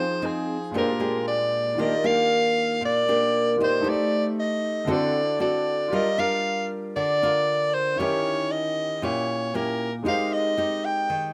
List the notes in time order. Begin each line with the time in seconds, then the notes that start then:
Already playing: F3 D#4 G#4 C5 G5
0.22 C4 D#4 G#4
0.71 A#2 G#3 D4 F4 G4
0.75 D4 G4 A#4 C5
1.00 G#3 D4 G4
1.28 D5
1.75 D#3 A#3 F4 G4
1.79 D4 G4 A#4 D5 D#5
2.04 A#3 D4 G4 F5
2.81 A#2
2.85 D5
3.08 A#3 D4 G4
3.56 D#3 F4 G4 A#4 D5
3.60 D#4 G4 C5
3.81 A3 D#4 G4
3.86 C5 D5
4.40 D#5
4.85 D3 C4 E4 F#4 A4
4.90 A4 C5 D5
5.39 C4 F#4 A4 D5
5.88 F4 G4
5.92 G3 D4 F4 A#4 D5 D#5
6.18 D4 F4 A#4 F5
6.96 D3 D5
7.23 D4 F4 A#4
7.74 C5
7.96 D#3 C#4 E4 G4 C#5
8.00 E4 G4 A#4 C#5
8.51 D#5
9.02 A#2 C#4 E4 G4 C#5
9.54 C#4 E4 G4 A#4
10.03 G#3 C4 D#4 G4
10.07 A#4 C5 F5
10.33 D#5
10.57 C4 D#4 G4
10.85 G5
11.10 D#3